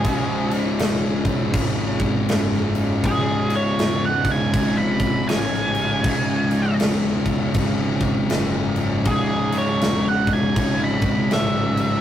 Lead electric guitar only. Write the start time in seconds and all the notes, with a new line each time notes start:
Already playing: G#4
3.06 G#4
3.55 C#5
4.05 F#5
4.31 G#5
4.78 B5
5.29 G#5
9.07 G#4
9.58 C#5
10.08 F#5
10.33 G#5
10.84 B5
11.33 E5